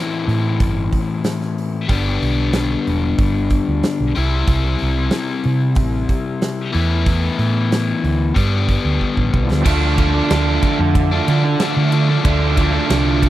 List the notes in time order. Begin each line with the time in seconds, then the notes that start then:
Already playing: A2 E3 A3 C4 E4
0.28 A2, open hi-hat
0.60 G1, kick, open hi-hat
0.93 kick, open hi-hat
1.24 snare, open hi-hat
1.41 snare
1.58 open hi-hat
1.88 G1 G2 D3 G3 B3 D4, kick, open hi-hat
2.22 B1, open hi-hat
2.53 snare, open hi-hat
2.87 E1, open hi-hat
3.18 G1, kick, open hi-hat
3.50 kick, open hi-hat
3.68 D2
3.83 snare, open hi-hat
4.00 B1
4.15 C2 C3 G3 C4 E4, open hi-hat
4.47 C2, kick, open hi-hat
4.79 C2, open hi-hat
5.11 snare, open hi-hat
5.44 C3, open hi-hat
5.75 A1, kick, open hi-hat
6.09 kick, open hi-hat
6.42 snare, open hi-hat
6.72 E2 E3 A3 B3 E4, open hi-hat
7.06 kick, open hi-hat
7.39 A2, open hi-hat
7.72 snare, open hi-hat
8.04 D2, open hi-hat
8.34 G2 D3 G3 B3 D4, kick, open hi-hat
8.69 kick, open hi-hat
8.85 D2
9.01 kick
9.17 A1, kick
9.34 B1 B3, kick
9.38 C4 D4
9.43 E4 F4
9.50 D2 G4 A4, snare
9.55 B4 C5
9.60 D5 E5
9.64 D2 D3 F3 A3 D4 F4 D5, kick, crash
9.98 D3 F3 A3 D4, kick, ride
10.14 F3 A3 D4
10.30 D2 D3 F3 A3 D4, snare, ride
10.62 kick, ride
10.79 F2, muted overdriven electric guitar stroke
10.95 kick, ride
11.11 F3 A3 D4
11.28 D3 F3 A3 D4, ride
11.45 muted overdriven electric guitar stroke
11.59 D3 F3 A3 D4, snare, ride
11.77 D3
11.92 D3 F3 A3 D4, ride
12.09 F3 A3 D4
12.24 D2 D3 F3 A3 D4 F4 D5, kick, ride
12.57 D3 F3 A3 D4, kick, ride
12.73 F3 A3 D4
12.89 C2 D3 F3 A3 D4, snare, ride
13.23 kick, ride